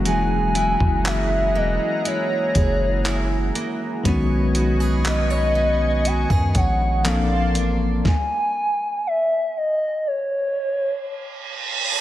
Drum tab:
HH |x-x-x---x-x-x-x-|x-x-x---x-x-x-x-|----------------|
CP |----x-------x---|----x-------x---|----------------|
SD |----------------|----------------|o---------------|
BD |---o------o-----|o--------oo-----|o---------------|